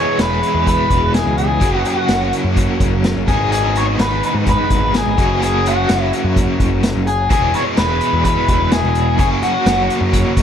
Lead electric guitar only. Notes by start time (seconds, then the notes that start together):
Already playing: C#5
0.20 B4
0.68 B4
1.14 G#4
1.38 G#4
1.85 F#4
3.28 G#4
3.52 G#4
3.77 C#5
4.01 B4
4.25 B4
4.49 B4
4.97 G#4
5.44 G#4
5.67 F#4
7.07 G#4
7.31 G#4
7.55 C#5
7.78 B4
8.25 B4
8.72 G#4
9.20 G#4
9.43 F#4